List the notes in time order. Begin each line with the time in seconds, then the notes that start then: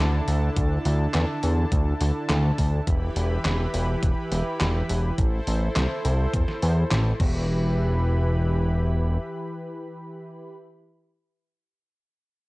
Already playing: D3 D4 E4 A4 A5
0.00 D2
0.28 D2, open hi-hat
0.56 D2, kick, closed hi-hat
0.85 D2, open hi-hat
1.14 E2, snare, clap, closed hi-hat
1.43 E2, open hi-hat
1.72 D2, kick, closed hi-hat
2.01 D2, open hi-hat
2.30 D2, snare, clap, closed hi-hat
2.58 D2, kick, open hi-hat
2.87 E1 E3 E4 G4 B4 B5, kick, closed hi-hat
3.16 E1, open hi-hat
3.45 E1, snare, clap, closed hi-hat
3.74 E1, open hi-hat
4.03 E1, kick, closed hi-hat
4.32 E1, open hi-hat
4.60 E1, snare, clap, closed hi-hat
4.89 E1, open hi-hat
5.18 A1 E4 A4 C5, kick, closed hi-hat
5.47 A1, open hi-hat
5.76 C2, snare, clap, closed hi-hat
6.05 C2, open hi-hat
6.33 E2, kick, closed hi-hat
6.48 snare
6.62 E2, open hi-hat
6.91 A1, snare, clap, closed hi-hat
7.20 E1 E3 E4 G4 B4 B5, kick, crash